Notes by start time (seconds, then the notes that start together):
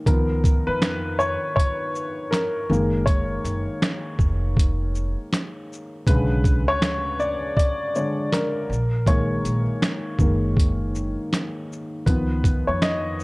0.06 C#2 D#3 F3 B3 A#4, kick, closed hi-hat
0.44 kick, closed hi-hat, shaker
0.67 F2 B4
0.82 finger snap, snare, closed hi-hat
1.19 C#5, shaker
1.56 C#5, kick, closed hi-hat
1.95 shaker
2.31 A#4, finger snap, snare, closed hi-hat
2.70 F#1 D#3 G#3 A#3, shaker
3.06 C#5, kick, closed hi-hat
3.44 F#1, closed hi-hat, shaker
3.82 finger snap, snare, closed hi-hat
4.19 F1, kick, shaker
4.57 kick, closed hi-hat
4.95 shaker
5.33 finger snap, snare, closed hi-hat
5.73 shaker
6.07 B1 C#3 D3 G#3 B4, kick, closed hi-hat
6.44 kick, closed hi-hat, shaker
6.68 D2 C#5
6.82 finger snap, snare, closed hi-hat
7.20 D5, shaker
7.57 D5, kick, closed hi-hat
7.95 D3 G#3 C#5, shaker
8.32 A#4, finger snap, snare, closed hi-hat
8.70 A#1, shaker
9.07 D#3 G#3 A#3 C#5, kick, closed hi-hat
9.45 A#1, closed hi-hat, shaker
9.82 finger snap, snare, closed hi-hat
10.19 F#1 D#3 G#3 A#3, kick, shaker
10.57 kick, closed hi-hat
10.95 shaker
11.33 finger snap, snare, closed hi-hat
11.72 shaker
12.06 C#2 D#3 F3 B3 B4, kick, closed hi-hat
12.44 kick, closed hi-hat, shaker
12.67 F2 C#5
12.82 D#5, finger snap, snare, closed hi-hat
13.20 shaker